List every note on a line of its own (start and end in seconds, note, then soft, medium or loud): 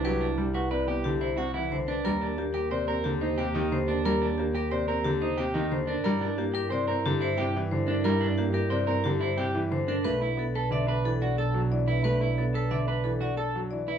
0.00 1.94 C2 medium
0.00 1.84 E4 medium
0.04 0.26 F#3 medium
0.04 0.26 G4 medium
0.04 0.26 B4 medium
0.21 0.43 D4 medium
0.38 0.59 G3 medium
0.38 0.60 G4 medium
0.55 0.71 F#4 medium
0.55 0.76 B4 medium
0.71 0.93 C3 medium
0.71 0.87 B4 medium
0.71 0.93 D5 medium
0.88 1.09 B3 medium
0.88 1.10 G4 medium
1.04 1.26 D3 medium
1.04 1.26 G4 medium
1.21 1.37 E4 medium
1.21 1.43 C5 medium
1.37 1.60 C3 medium
1.37 1.54 F#4 medium
1.37 1.59 F#5 medium
1.54 1.77 E3 medium
1.54 1.76 E4 medium
1.72 1.93 D3 medium
1.72 1.93 C5 medium
1.88 2.10 D4 medium
1.88 2.10 B4 medium
2.04 5.94 D#2 medium
2.04 2.27 G3 medium
2.04 5.84 G4 medium
2.04 2.26 A#4 medium
2.21 2.43 D4 medium
2.38 2.60 A#3 medium
2.38 2.60 G4 medium
2.54 2.71 G4 medium
2.54 2.76 A#4 medium
2.71 2.93 C3 medium
2.71 2.87 C5 medium
2.71 2.93 D5 medium
2.88 3.10 C4 medium
2.88 3.10 A#4 medium
3.04 3.26 D3 medium
3.04 3.26 G4 medium
3.21 3.43 D#4 medium
3.21 3.43 C5 medium
3.38 3.60 C3 medium
3.38 3.59 G4 medium
3.38 3.60 G5 medium
3.54 3.76 D#3 medium
3.54 3.76 D#4 medium
3.72 3.93 D3 medium
3.72 3.93 C5 medium
3.88 4.10 D4 medium
3.88 4.04 A#4 medium
4.05 4.27 G3 medium
4.05 4.26 A#4 medium
4.05 4.27 A#4 medium
4.22 4.43 D4 medium
4.38 4.60 A#3 medium
4.38 4.60 G4 medium
4.55 4.71 G4 medium
4.55 4.77 A#4 medium
4.71 4.93 C3 medium
4.71 4.88 C5 medium
4.71 4.93 D5 medium
4.88 5.10 C4 medium
4.88 5.10 A#4 medium
5.04 5.26 D3 medium
5.04 5.26 G4 medium
5.21 5.43 D#4 medium
5.21 5.43 C5 medium
5.37 5.60 C3 medium
5.37 5.59 G4 medium
5.37 5.60 G5 medium
5.54 5.76 D#3 medium
5.54 5.76 D#4 medium
5.71 5.93 D3 medium
5.71 5.93 C5 medium
5.87 6.09 D4 medium
5.87 6.03 A#4 medium
6.04 9.94 G2 medium
6.04 6.27 G3 medium
6.04 9.84 E4 medium
6.04 6.26 A#4 medium
6.21 6.43 D4 medium
6.38 6.60 A#3 medium
6.38 6.60 G4 medium
6.54 6.70 G4 medium
6.54 6.76 A#4 medium
6.70 6.93 C3 medium
6.70 6.87 C5 medium
6.70 6.93 D5 medium
6.88 7.10 C4 medium
6.88 7.10 A#4 medium
7.06 7.27 D3 medium
7.06 7.27 G4 medium
7.21 7.43 E4 medium
7.21 7.43 C5 medium
7.38 7.60 C3 medium
7.38 7.59 G4 loud
7.38 7.59 G5 medium
7.56 7.77 E3 medium
7.71 7.93 D3 medium
7.71 7.93 C5 medium
7.87 8.10 D4 medium
7.87 8.03 A#4 medium
8.04 8.26 G3 medium
8.04 8.26 A#4 medium
8.21 8.43 D4 medium
8.38 8.60 A#3 medium
8.38 8.59 G4 medium
8.54 8.76 G4 medium
8.54 8.76 A#4 medium
8.70 8.93 C3 medium
8.70 8.87 C5 medium
8.70 8.93 D5 medium
8.87 9.10 C4 medium
8.87 9.09 A#4 medium
9.04 9.26 D3 medium
9.04 9.26 G4 medium
9.21 9.43 E4 medium
9.21 9.43 C5 medium
9.37 9.60 C3 medium
9.37 9.59 G4 medium
9.37 9.60 G5 medium
9.55 9.76 E3 medium
9.71 9.93 D3 medium
9.71 9.93 C5 medium
9.88 10.10 D4 medium
9.88 10.10 A#4 medium
10.04 13.94 B1 medium
10.04 10.26 A3 medium
10.04 13.84 D4 medium
10.04 10.26 B4 medium
10.04 10.21 B4 medium
10.22 10.43 E4 medium
10.37 10.59 B3 medium
10.37 10.60 A4 medium
10.55 10.71 A4 medium
10.55 10.76 B4 medium
10.71 10.93 D3 medium
10.71 10.88 D5 medium
10.71 10.93 E5 medium
10.87 11.09 D4 medium
10.87 11.10 B4 medium
11.05 11.26 E3 medium
11.05 11.26 A4 medium
11.22 11.38 F#4 medium
11.22 11.43 D5 medium
11.38 11.60 A4 medium
11.38 11.60 A5 medium
11.54 11.76 F#3 medium
11.71 11.93 E3 medium
11.71 11.93 D5 medium
11.88 12.04 E4 medium
11.88 12.03 B4 medium
12.04 12.26 A3 medium
12.04 12.26 B4 medium
12.04 12.21 B4 medium
12.21 12.43 E4 medium
12.38 12.60 B3 medium
12.38 12.60 A4 medium
12.54 12.76 A4 medium
12.54 12.76 B4 medium
12.71 12.93 D3 medium
12.71 12.88 D5 medium
12.71 12.93 E5 medium
12.88 13.09 D4 medium
12.88 13.10 B4 medium
13.04 13.26 E3 medium
13.04 13.26 A4 medium
13.21 13.37 F#4 medium
13.21 13.43 D5 medium
13.37 13.59 A4 medium
13.37 13.59 A5 medium
13.55 13.76 F#3 medium
13.71 13.93 E3 medium
13.71 13.93 D5 medium
13.88 13.98 E4 medium
13.88 13.98 B4 medium